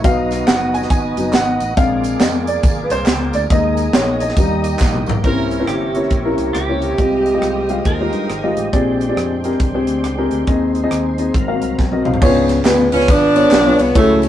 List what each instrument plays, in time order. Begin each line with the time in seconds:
Already playing: string section F#4
0.03 fingered electric bass B1, grand piano F#3 B3 D#4 F5, tonewheel organ B3 D#4 F#4 D#5, string section D#5 B5 D#6, kick, closed hi-hat, tambourine
0.31 snare, closed hi-hat, tambourine
0.47 fingered electric bass F#1, grand piano F#5, snare, clap, closed hi-hat, tambourine
0.74 grand piano G#5, closed hi-hat, tambourine
0.82 snare
0.90 fingered electric bass G#1, grand piano G#5, kick, closed hi-hat, tambourine
1.17 fingered electric bass F#1, grand piano F#3 B3 D#4, closed hi-hat, tambourine
1.33 fingered electric bass G#1, grand piano F#5, snare, clap, closed hi-hat, tambourine
1.60 fingered electric bass A1, closed hi-hat, tambourine
1.77 fingered electric bass A#1, grand piano G#3 C4 D4 F5, tonewheel organ A#3 F4 G#4 D5, string section F5 G#5 A#5 D6, kick, closed hi-hat, tambourine
2.04 closed hi-hat, tambourine
2.20 fingered electric bass F2, grand piano D#5, snare, clap, closed hi-hat, tambourine
2.47 grand piano D5, closed hi-hat, tambourine
2.63 fingered electric bass G#1, kick, closed hi-hat, tambourine
2.83 grand piano B4
2.90 fingered electric bass C2, grand piano C5, closed hi-hat, tambourine
3.06 fingered electric bass C#2, snare, clap, closed hi-hat, tambourine
3.33 fingered electric bass D2, grand piano D5, closed hi-hat, tambourine
3.50 fingered electric bass D#2, grand piano G#3 A#3 D#4 D#5, tonewheel organ A#3 D#4 G#4 D#5, string section D#5 G#5 D#6, kick, closed hi-hat, tambourine
3.77 closed hi-hat, tambourine
3.93 fingered electric bass A#1, grand piano C#5, snare, clap, closed hi-hat, tambourine
4.20 grand piano D#5, closed hi-hat, tambourine
4.29 snare
4.37 fingered electric bass D#2, grand piano G3 A#3 D#4, tonewheel organ A#3 D#4 G4 D#5, string section G5, kick, closed hi-hat, tambourine
4.64 closed hi-hat, tambourine
4.79 fingered electric bass A#1, tonewheel organ G4 D#5, kick, snare, clap, tambourine
4.95 mid tom
5.06 fingered electric bass B1, tonewheel organ A#4 G5, floor tom, tambourine
5.23 fingered electric bass C2, tonewheel organ C3 E4 A#4 C#5, grand piano C3 A#3 C#4 E4 C5, saxophone section C#4 E4 A#4, clean electric guitar A#4, string section E5 A#5 C6 C#6, kick, closed hi-hat
5.51 cross-stick, closed hi-hat
5.60 grand piano A#3 C#4 E4 C5
5.67 fingered electric bass G1, saxophone section A#3 E4 G4, clean electric guitar G4, cross-stick, closed hi-hat
5.95 grand piano A#3 C#4 E4 C#5, closed hi-hat
6.03 cross-stick
6.10 fingered electric bass A#1, kick, closed hi-hat
6.25 grand piano A#3 C#4 E4 A#4
6.38 fingered electric bass C2, closed hi-hat
6.53 fingered electric bass C#2, saxophone section A#3 E4 G4, clean electric guitar G4, cross-stick, closed hi-hat
6.69 grand piano A#3 C#4 E4 C#5
6.82 closed hi-hat
6.97 fingered electric bass C2, grand piano C3 G#3 F4 G4 D#5, tonewheel organ F3 G#3 G4 D5, string section D#5 G5 D#6, kick, closed hi-hat
7.03 tonewheel organ D#5
7.26 closed hi-hat
7.34 grand piano G#3 F4 G4 D#5
7.42 fingered electric bass C2, clean electric guitar F4, cross-stick, closed hi-hat
7.69 grand piano G#3 F4 G4 F5, closed hi-hat
7.85 fingered electric bass D#2, saxophone section D#4 F4 A#4, clean electric guitar A#4, kick, closed hi-hat
8.00 grand piano G#3 F4 G4 C5
8.13 fingered electric bass G2, closed hi-hat
8.30 fingered electric bass G#1, cross-stick, closed hi-hat
8.43 grand piano G#3 F4 G4 D#5
8.57 fingered electric bass A1, closed hi-hat
8.72 fingered electric bass A#1, grand piano A#2 C4 G4 G#4 D5, tonewheel organ G#3 C#4 C5 G5, string section D5 C6, kick, closed hi-hat
8.78 tonewheel organ D4
9.00 cross-stick, closed hi-hat
9.09 grand piano C4 G4 G#4 D5
9.16 fingered electric bass F2, cross-stick, closed hi-hat
9.44 grand piano C4 G4 G#4 A#4, closed hi-hat
9.52 cross-stick
9.60 fingered electric bass C2, kick, closed hi-hat
9.74 grand piano C4 G4 G#4 C5
9.87 fingered electric bass D2, closed hi-hat
10.04 fingered electric bass C#2, cross-stick, closed hi-hat
10.18 grand piano C4 G4 G#4 A#4
10.31 fingered electric bass D2, closed hi-hat
10.47 fingered electric bass D#2, grand piano D#3 C4 D#4 G#4 D#5, tonewheel organ G#3 C4 D#4 A#4, string section C5 D#5, kick, closed hi-hat
10.52 tonewheel organ C5
10.75 closed hi-hat
10.83 grand piano C4 D#4 G#4 D#5
10.91 fingered electric bass D#2, cross-stick, closed hi-hat
11.18 grand piano C4 D#4 G#4 D#5, closed hi-hat
11.34 fingered electric bass G#1, grand piano G#2, tonewheel organ F#3 C4 A4 F5, string section F#4 F5 A#5, kick, closed hi-hat
11.39 tonewheel organ A#4
11.48 grand piano A#3 F#4 A#4 F5
11.54 grand piano C4
11.61 fingered electric bass C2, grand piano A#5, closed hi-hat
11.78 fingered electric bass B1, tonewheel organ A#4, grand piano G#5, kick, snare
11.92 grand piano C4 F#4 A#4 D#5, high tom
12.04 fingered electric bass C2, tonewheel organ D#4 C5, grand piano F5, mid tom
12.14 floor tom
12.22 fingered electric bass C#2, grand piano C#3 B3 D4 F4 G#4 C#5, kick, crash, tambourine
12.48 snare, ride, tambourine
12.65 fingered electric bass D2, grand piano B3 D4 F4 G#4 B4, snare, clap, ride, tambourine
12.92 fingered electric bass C#2, grand piano B3 D4 F4 G#4 B4, saxophone section C#4, ride, tambourine
13.00 snare
13.08 fingered electric bass G#1, saxophone section F3 B3 D4, kick, ride, tambourine
13.35 grand piano B3 D4 F4 G#4 C#5, ride, tambourine
13.51 fingered electric bass B1, snare, clap, ride, tambourine
13.65 grand piano B3 D4 F4 G#4 C#5
13.78 fingered electric bass C2, saxophone section B3, ride, tambourine
13.95 fingered electric bass C#2, grand piano C#3 A3 E4 F#4 G#4 C#5, saxophone section E3 F#3 A3, kick, ride, tambourine
14.22 saxophone section E3 G#3, ride, tambourine